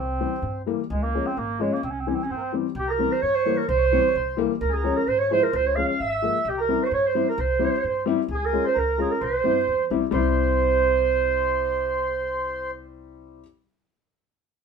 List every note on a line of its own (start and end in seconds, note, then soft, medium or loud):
0.00 0.23 C2 loud
0.00 0.62 C4 medium
0.00 0.63 C4 medium
0.21 0.32 E3 medium
0.21 0.32 G3 medium
0.21 0.32 C4 medium
0.42 0.71 G2 medium
0.66 0.78 E3 medium
0.66 0.79 G3 medium
0.66 0.79 A#3 medium
0.90 1.18 C#2 loud
0.90 1.02 G#3 medium
0.90 1.04 G#3 loud
1.03 1.26 A#3 medium
1.03 1.28 A#3 loud
1.14 1.26 F3 medium
1.14 1.26 G#3 medium
1.14 1.26 C#4 medium
1.26 1.38 C4 medium
1.26 1.40 C4 medium
1.37 1.65 G#1 medium
1.37 1.61 A#3 medium
1.37 1.62 A#3 loud
1.59 1.72 F3 medium
1.59 1.81 G#3 medium
1.59 1.72 G#3 medium
1.59 1.74 G#3 medium
1.59 1.72 C#4 medium
1.73 1.83 A#3 loud
1.83 2.11 C2 loud
1.83 1.93 C4 medium
1.91 2.02 C#4 medium
2.00 2.10 C4 medium
2.07 2.19 E3 medium
2.07 2.19 G3 medium
2.07 2.19 C4 medium
2.07 2.17 C#4 medium
2.15 2.25 C4 medium
2.24 2.33 C#4 medium
2.30 2.58 G2 medium
2.30 2.36 C4 medium
2.30 2.54 C4 medium
2.37 2.42 A#3 medium
2.41 2.52 C4 medium
2.52 2.65 E3 medium
2.52 2.65 G3 medium
2.52 2.65 C4 medium
2.75 3.04 C2 loud
2.75 2.88 G4 medium
2.79 2.92 G4 medium
2.88 3.21 A#4 medium
2.88 3.14 A#4 loud
2.98 3.11 E3 medium
2.98 3.11 G3 medium
2.98 3.12 C4 medium
3.12 3.24 C5 loud
3.22 3.51 G2 medium
3.22 3.36 C#5 loud
3.22 3.66 C#5 medium
3.35 3.58 C5 loud
3.46 3.58 E3 medium
3.46 3.58 G3 medium
3.46 3.58 A#3 medium
3.57 3.69 A#4 medium
3.68 3.97 C2 loud
3.68 3.77 C5 medium
3.68 4.35 C5 loud
3.77 3.85 C#5 medium
3.84 3.92 C5 medium
3.92 4.04 E3 medium
3.92 4.05 G3 medium
3.92 4.05 C4 medium
3.92 4.00 C#5 medium
4.01 4.09 C5 medium
4.08 4.16 C#5 medium
4.15 4.43 C2 medium
4.15 4.38 C5 medium
4.37 4.50 E3 medium
4.37 4.50 G3 medium
4.37 4.51 A#3 loud
4.60 4.89 C#2 loud
4.60 4.75 A#4 loud
4.60 4.69 A#4 medium
4.69 4.76 G#4 medium
4.69 4.98 G#4 medium
4.75 4.94 A#4 medium
4.84 4.96 F3 medium
4.84 4.97 G#3 medium
4.84 4.97 C#4 medium
4.95 5.07 A#4 medium
4.95 5.09 A#4 medium
5.07 5.36 G#1 medium
5.07 5.20 C5 loud
5.07 5.20 C5 medium
5.19 5.31 C#5 medium
5.19 5.32 C#5 medium
5.31 5.43 F3 medium
5.31 5.43 G#3 medium
5.31 5.44 E4 medium
5.31 5.50 C5 medium
5.31 5.45 C5 loud
5.43 5.57 A#4 loud
5.52 5.81 C#2 loud
5.52 5.77 C5 medium
5.52 5.68 C5 loud
5.67 5.77 C#5 loud
5.75 5.89 F3 medium
5.75 5.89 G#3 medium
5.75 5.89 C#4 medium
5.75 5.87 F5 medium
5.88 5.99 F5 medium
5.88 6.01 F5 medium
6.00 6.28 G#1 medium
6.00 6.48 E5 medium
6.00 6.51 E5 loud
6.22 6.35 F3 medium
6.22 6.35 G#3 medium
6.22 6.35 A#3 medium
6.45 6.73 C2 loud
6.45 6.59 G4 medium
6.50 6.60 G4 medium
6.58 6.82 A#4 medium
6.58 6.85 A#4 loud
6.69 6.81 G3 medium
6.69 6.81 C4 medium
6.69 6.81 E4 medium
6.82 6.85 C5 medium
6.82 6.93 C5 medium
6.82 6.88 C#5 medium
6.89 7.19 G2 medium
6.89 6.94 C5 medium
6.93 7.05 C#5 medium
6.93 7.08 C#5 loud
7.06 7.29 C5 medium
7.15 7.27 G3 medium
7.15 7.27 C4 medium
7.15 7.28 E4 medium
7.29 7.39 A#4 medium
7.29 7.41 A#4 medium
7.38 7.66 C2 loud
7.38 8.04 C5 medium
7.38 8.08 C5 medium
7.59 7.72 G3 medium
7.59 7.72 C4 medium
7.59 7.73 E4 medium
7.84 8.12 G2 medium
8.06 8.18 G3 medium
8.06 8.19 C4 medium
8.06 8.19 E4 loud
8.28 8.57 C#2 loud
8.28 8.66 G#4 medium
8.34 8.47 G#4 medium
8.46 8.67 A#4 loud
8.53 8.65 G#3 medium
8.53 8.65 C#4 medium
8.53 8.65 F4 medium
8.65 8.77 C5 medium
8.65 8.80 C5 medium
8.74 9.04 C#2 medium
8.74 9.22 A#4 medium
8.79 9.00 A#4 loud
8.98 9.10 G#3 medium
8.98 9.11 C#4 medium
8.98 9.11 F4 medium
8.98 9.13 G#4 loud
9.12 9.25 A#4 medium
9.21 9.35 C2 loud
9.21 9.86 C5 medium
9.21 9.91 C5 loud
9.44 9.65 G2 medium
9.44 9.56 G3 medium
9.44 9.56 C4 medium
9.44 9.56 E4 medium
9.67 9.88 E2 medium
9.90 10.11 C2 medium
9.90 10.02 G3 medium
9.90 10.02 C4 medium
9.90 10.02 E4 medium
10.11 13.40 C2 loud
10.11 13.40 G3 loud
10.11 13.41 C4 medium
10.11 12.71 C5 loud
10.11 12.72 C5 loud
10.16 13.42 E4 medium